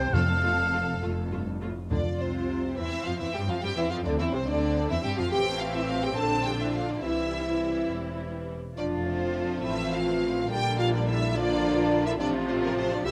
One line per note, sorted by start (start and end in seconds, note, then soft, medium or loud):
0.00 0.15 C5 loud
0.00 0.15 G5 medium
0.13 0.93 F1 medium
0.13 0.99 F2 medium
0.13 0.93 F2 medium
0.13 0.23 A3 medium
0.13 0.22 F4 medium
0.13 1.45 A4 medium
0.13 1.03 F5 loud
0.13 1.02 F5 medium
0.44 0.52 A3 medium
0.44 0.52 F4 medium
0.73 0.81 A3 soft
0.73 0.81 F4 soft
1.02 1.81 F1 medium
1.02 1.31 F2 medium
1.02 1.10 A3 soft
1.02 1.10 F4 medium
1.32 1.62 G2 medium
1.32 1.40 A3 medium
1.32 1.40 F4 medium
1.62 1.70 A2 medium
1.62 1.70 A3 medium
1.62 1.70 F4 medium
1.91 2.00 D2 medium
1.91 2.73 F2 medium
1.91 1.99 D3 medium
1.91 1.99 D4 medium
1.91 2.05 D4 medium
1.91 2.73 F4 medium
1.91 2.18 D5 medium
2.20 2.77 C2 soft
2.20 2.76 C3 soft
2.20 2.76 C4 soft
2.20 2.77 C4 soft
2.20 2.78 C5 medium
2.77 2.86 E2 medium
2.77 3.06 E3 medium
2.77 6.13 C4 medium
2.77 3.06 E4 medium
2.77 3.05 E5 medium
3.06 3.13 F2 soft
3.06 3.20 F3 medium
3.06 3.20 F4 medium
3.06 3.13 F4 soft
3.06 3.20 F5 medium
3.20 3.26 E2 medium
3.20 3.34 E3 medium
3.20 3.34 E4 medium
3.20 3.35 E4 medium
3.20 3.34 E5 medium
3.33 3.49 G2 medium
3.33 3.40 G3 medium
3.33 3.40 G4 medium
3.33 3.41 G4 medium
3.33 3.48 G5 medium
3.48 3.63 F2 medium
3.48 3.63 F3 medium
3.48 3.54 F4 medium
3.48 3.56 F4 medium
3.48 3.63 F5 medium
3.62 3.77 G2 medium
3.62 3.69 G3 medium
3.62 3.77 G4 medium
3.62 3.70 G4 medium
3.62 3.77 G5 medium
3.76 3.92 E2 medium
3.76 3.91 E3 medium
3.76 3.91 E4 medium
3.76 3.91 E5 medium
3.90 4.06 F2 medium
3.90 4.05 F3 medium
3.90 4.05 F4 medium
3.90 3.96 F5 medium
4.05 4.20 D2 medium
4.05 4.19 D3 medium
4.05 4.19 D4 medium
4.05 4.20 D4 medium
4.05 4.11 D5 medium
4.18 4.34 E2 medium
4.18 4.25 E3 medium
4.18 4.33 E4 medium
4.18 4.25 E5 medium
4.32 4.48 C2 medium
4.32 4.39 C3 medium
4.32 4.47 C4 medium
4.32 4.41 C4 medium
4.32 4.48 C5 medium
4.46 4.91 D2 medium
4.46 4.89 D3 medium
4.46 4.88 D4 medium
4.46 4.90 D4 medium
4.46 4.90 D5 medium
4.89 4.96 E2 medium
4.89 5.04 E3 medium
4.89 4.95 E4 medium
4.89 5.05 E4 medium
4.89 5.04 E5 medium
5.03 5.10 G2 medium
5.03 5.18 G3 medium
5.03 5.18 G4 medium
5.03 5.18 G5 medium
5.17 5.24 F2 medium
5.17 5.32 F3 medium
5.17 5.32 F4 medium
5.17 5.33 F4 medium
5.17 5.32 F5 medium
5.31 6.13 A1 medium
5.31 6.13 E3 medium
5.31 6.13 A3 medium
5.31 6.99 C4 medium
5.31 6.13 G4 soft
5.31 5.45 G4 medium
5.31 5.60 G5 medium
5.60 5.68 F4 soft
5.60 5.74 F5 medium
5.74 5.81 E4 medium
5.74 5.89 E5 medium
5.88 6.04 F4 medium
5.88 6.03 F5 medium
6.03 6.10 G4 medium
6.03 6.17 G5 medium
6.17 7.04 A#1 medium
6.17 7.03 D3 soft
6.17 7.03 D4 medium
6.17 7.03 F4 medium
6.17 6.31 A4 medium
6.17 6.46 A5 medium
6.45 6.53 G4 soft
6.45 6.60 G5 medium
6.60 6.75 E4 soft
6.60 6.75 E5 medium
6.74 6.89 F4 medium
6.74 6.89 F5 medium
6.89 7.04 D4 soft
6.89 7.04 D5 medium
7.02 7.89 C2 soft
7.02 8.55 E3 soft
7.02 8.55 G3 soft
7.02 8.57 C4 soft
7.02 8.57 E4 soft
7.02 8.32 E4 medium
7.02 7.90 E4 medium
7.02 7.89 E5 medium
7.91 8.57 E1 soft
8.78 9.60 F1 medium
8.78 10.46 F3 soft
8.78 10.46 A3 medium
8.78 9.60 D4 soft
8.78 9.05 D4 medium
8.78 9.60 F4 medium
8.78 8.86 D5 medium
9.07 9.65 C4 soft
9.07 9.63 C5 medium
9.63 10.48 A1 medium
9.63 10.49 E3 soft
9.63 10.48 C4 medium
9.63 10.50 C4 soft
9.63 9.77 E4 medium
9.63 9.92 E5 medium
9.92 10.49 F4 medium
9.92 10.50 F5 medium
10.49 12.20 A#1 medium
10.49 11.33 D3 medium
10.49 11.35 G3 medium
10.49 11.34 A#3 soft
10.49 11.33 D4 medium
10.49 10.78 G4 medium
10.49 10.78 G5 loud
10.78 10.93 F4 medium
10.78 10.92 F5 medium
10.94 11.07 D4 medium
10.94 11.07 D5 medium
11.07 11.36 E4 medium
11.07 11.35 E5 medium
11.35 12.18 D3 medium
11.35 12.18 F3 medium
11.35 12.18 A#3 medium
11.35 12.18 D4 medium
11.35 12.06 D4 medium
11.35 12.18 F4 medium
11.35 12.06 D5 loud
12.06 12.21 E4 medium
12.06 12.12 E5 medium
12.20 13.02 A1 medium
12.20 13.02 C3 medium
12.20 13.02 F3 medium
12.20 13.02 A3 medium
12.20 13.02 C4 medium
12.20 12.33 D4 medium
12.20 13.04 F4 medium
12.20 12.28 D5 loud
12.48 12.63 C4 soft
12.48 12.54 C5 medium
12.62 12.69 A#3 medium
12.62 12.77 A#4 medium
12.77 12.91 C4 medium
12.77 12.91 C5 medium
12.92 13.06 D4 medium
12.92 13.06 D5 medium
13.05 13.11 C2 medium
13.05 13.11 C3 medium
13.05 13.11 G3 medium
13.05 13.11 A#3 medium
13.05 13.11 C4 medium
13.05 13.11 E4 medium
13.05 13.11 G4 medium
13.05 13.11 E5 loud